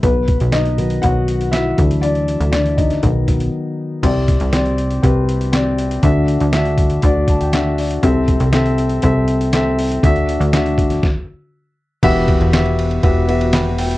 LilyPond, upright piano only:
<<
  \new Staff \with { instrumentName = "Upright piano" } { \time 4/4 \key e \minor \tempo 4 = 120 << { <b b'>4 <dis' dis''>4 <fis' fis''>4 <e' e''>4 | <d' d''>4 <d' d''>8 <dis' dis''>4. r4 | r1 | r2 r8 a''16 g''16 fis''8 d''8 |
r1 | r1 | r2. <g'' b''>8 <e'' g''>8 | } \\ { r1 | r1 | <c' g' d''>4 <c' g' d''>4 <c' g' b'>4 <c' g' d''>4 | <d' fis' e''>4 <d' fis' e''>4 <d' fis' d''>4 <d' fis' e''>4 |
<c' a' e''>4 <c' a' e''>4 <c' a' e''>4 <c' a' e''>4 | <d' fis' e''>4 <d' fis' e''>4 r2 | <b fis' g' e''>4 <b fis' g' e''>4 <b fis' g' e''>8 <b fis' g' e''>8 r4 | } >> }
  \new Staff \with { instrumentName = "Upright piano" } { \clef bass \time 4/4 \key e \minor r4. <dis fis b>8 r4. <e fis d'>8 | r2 <dis fis b>8 r4. | c4. r2 r8 | d4. r2 r8 |
c4. r2 r8 | d4. r2 r8 | e4. r2 r8 | }
>>